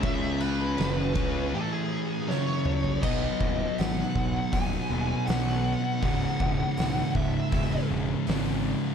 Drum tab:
CC |----------------|x---------------|----------------|
RD |x-x-x-x---------|----------------|----------------|
HH |----------------|----o---o---o---|o---o---o---o---|
SD |----o-------o---|----o-------o---|----o-------o---|
T2 |--------------o-|----------------|----------------|
FT |---------------o|----------------|----------------|
BD |o-----o---------|o-o---o-o-------|o-o---o-o-------|